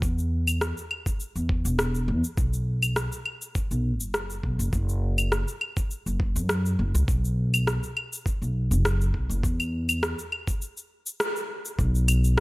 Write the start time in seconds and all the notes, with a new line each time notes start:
0.02 E2, kick, cabasa
0.18 cabasa
0.47 cabasa, claves
0.61 cross-stick, cabasa
0.77 cabasa
0.91 claves
1.06 kick, cabasa
1.20 cabasa
1.36 E2, cabasa
1.49 kick
1.65 E1, cabasa
1.79 cross-stick, cabasa
1.95 cabasa
2.08 E2
2.24 cabasa
2.37 B1, kick, cabasa
2.53 cabasa
2.83 cabasa, claves
2.96 cross-stick, cabasa
3.12 cabasa
3.26 claves
3.42 cabasa
3.55 kick, cabasa
3.71 B1, cabasa
4.00 F#1, cabasa
4.14 cross-stick, cabasa
4.30 cabasa
4.43 B1, kick
4.59 F#1, cabasa
4.73 F#1, kick, cabasa
4.89 cabasa
5.18 cabasa, claves
5.32 cross-stick, cabasa
5.48 cabasa
5.61 claves
5.77 kick, cabasa
5.91 cabasa
6.06 F#1, cabasa
6.20 kick
6.36 F#2, cabasa
6.49 cross-stick, cabasa
6.66 cabasa
6.79 F#1
6.95 C#2, cabasa
7.08 B1, kick, cabasa
7.25 cabasa
7.54 cabasa, claves
7.67 cross-stick, cabasa
7.83 cabasa
7.97 claves
8.13 cabasa
8.26 kick, cabasa
8.42 B1, cabasa
8.71 F#1, cabasa
8.85 cross-stick, cabasa
9.01 cabasa
9.14 B1, kick
9.30 F#1, cabasa
9.43 E2, kick, cabasa
9.60 cabasa, claves
9.89 cabasa, claves
10.03 cross-stick, cabasa
10.19 cabasa
10.32 claves
10.47 kick, cabasa
10.62 cabasa
10.77 cabasa
11.06 cabasa
11.20 cross-stick, cabasa
11.36 cabasa
11.65 cabasa
11.79 B1, kick, cabasa
11.95 cabasa
12.08 closed hi-hat, cabasa, claves
12.24 cabasa